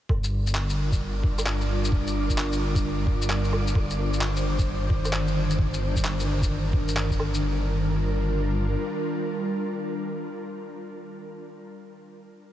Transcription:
0.09 3.74 G1 medium
0.09 3.72 G3 medium
0.09 3.72 D4 medium
0.09 7.43 D4 medium
0.09 3.72 F4 medium
0.09 3.72 A#4 medium
0.09 7.43 D5 medium
0.09 kick loud
0.09 low woodblock soft
0.24 shaker soft
0.47 shaker soft
0.55 clap loud
0.69 shaker soft
0.92 kick medium
0.92 shaker medium
1.24 kick loud
1.38 low woodblock soft
1.38 shaker medium
1.46 clap loud
1.61 shaker soft
1.84 shaker medium
1.92 kick loud
2.07 shaker soft
2.30 kick medium
2.30 shaker soft
2.38 clap loud
2.52 shaker soft
2.75 kick loud
2.75 shaker medium
3.07 kick loud
3.22 shaker medium
3.30 clap loud
3.44 shaker soft
3.53 low woodblock soft
3.67 shaker medium
3.74 7.40 G1 medium
3.74 7.38 D#3 medium
3.74 7.38 D4 medium
3.74 5.56 C5 medium
3.74 kick loud
3.74 low woodblock soft
3.90 shaker soft
4.13 shaker medium
4.21 clap loud
4.36 shaker soft
4.59 kick loud
4.59 shaker medium
4.90 kick loud
5.05 low woodblock soft
5.05 shaker medium
5.13 clap loud
5.28 shaker soft
5.50 shaker medium
5.59 7.40 A#4 medium
5.59 kick loud
5.73 shaker soft
5.96 kick medium
5.96 shaker soft
6.05 clap loud
6.20 shaker soft
6.42 kick loud
6.42 shaker medium
6.73 kick loud
6.88 shaker medium
6.97 clap loud
7.11 kick medium
7.11 shaker soft
7.20 low woodblock soft
7.34 shaker medium
7.41 8.75 G1 medium
7.41 10.57 G3 medium
7.41 10.56 D4 medium
7.41 10.56 F4 medium
7.41 10.57 A#4 medium

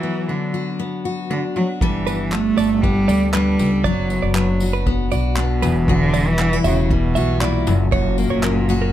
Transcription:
0.00 0.30 E3 loud
0.00 1.81 F#3 medium
0.00 0.79 B3 medium
0.00 0.53 F#4 medium
0.28 0.79 D3 medium
0.28 1.30 D4 medium
0.54 1.04 F#4 medium
0.79 2.07 B3 medium
1.05 1.55 F#4 medium
1.31 1.42 D3 medium
1.31 2.33 D4 medium
1.56 1.67 F#3 loud
1.56 1.81 F#4 medium
1.81 2.54 G1 medium
1.81 2.33 E3 loud
1.81 3.85 G3 medium
1.81 2.58 A4 medium
1.81 kick loud
2.07 2.83 B3 medium
2.07 2.19 B4 medium
2.07 tambourine medium
2.32 2.83 A3 loud
2.32 3.34 D4 medium
2.32 clap loud
2.57 3.04 G1 medium
2.57 3.08 A4 medium
2.57 2.70 D5 medium
2.57 tambourine medium
2.82 3.33 G3 loud
2.82 4.10 B3 medium
2.82 kick loud
3.08 3.55 D2 loud
3.08 3.58 A4 medium
3.08 3.32 D5 medium
3.08 tambourine medium
3.33 3.86 G3 loud
3.33 3.90 D4 medium
3.33 3.70 B4 medium
3.33 clap loud
3.59 3.83 C#2 loud
3.59 3.85 A4 medium
3.59 tambourine medium
3.84 4.20 F#1 loud
3.84 4.35 F#3 loud
3.84 5.92 F#3 medium
3.84 4.62 F#4 medium
3.84 4.09 D5 loud
3.84 kick loud
4.10 4.86 B3 medium
4.10 tambourine medium
4.22 5.08 F#1 medium
4.22 4.35 D5 medium
4.35 4.83 F#3 medium
4.35 5.36 D4 medium
4.35 4.48 B4 medium
4.35 clap loud
4.60 5.11 F#4 medium
4.60 tambourine medium
4.73 4.86 B4 medium
4.87 6.14 B3 medium
4.87 kick loud
5.11 5.59 B1 medium
5.11 5.89 F#4 medium
5.11 5.36 D5 medium
5.11 tambourine medium
5.37 5.91 B2 loud
5.37 5.68 D4 medium
5.37 clap loud
5.62 6.61 E1 loud
5.62 5.88 E2 medium
5.62 5.75 B4 medium
5.62 tambourine medium
5.88 7.67 E2 loud
5.88 6.29 D3 loud
5.88 6.65 F#4 medium
5.88 kick loud
6.14 6.90 G3 medium
6.14 6.26 D5 medium
6.14 tambourine medium
6.28 6.65 E3 loud
6.39 6.53 D4 medium
6.39 clap loud
6.53 7.41 E4 medium
6.64 7.12 E1 medium
6.64 6.93 C#3 medium
6.64 7.17 F#4 medium
6.64 6.77 E5 medium
6.64 tambourine medium
6.91 7.44 B2 loud
6.91 7.72 G3 medium
6.91 kick loud
7.15 7.63 B1 loud
7.15 7.92 F#4 medium
7.15 7.40 E5 medium
7.15 tambourine medium
7.41 7.93 A#2 loud
7.41 7.72 E4 medium
7.41 7.77 D5 medium
7.41 clap loud
7.67 7.90 F#1 loud
7.67 7.91 F#2 medium
7.67 tambourine medium
7.92 8.28 F#1 loud
7.92 8.92 F#2 medium
7.92 8.92 A#2 loud
7.92 8.68 F#4 medium
7.92 8.17 C#5 loud
7.92 kick loud
8.18 8.92 A#3 medium
8.18 tambourine medium
8.30 8.92 F#1 medium
8.30 8.43 C#5 medium
8.43 8.92 C#4 medium
8.43 8.55 A#4 medium
8.43 clap loud
8.69 8.92 F#4 medium
8.69 tambourine medium
8.82 8.92 A#4 medium

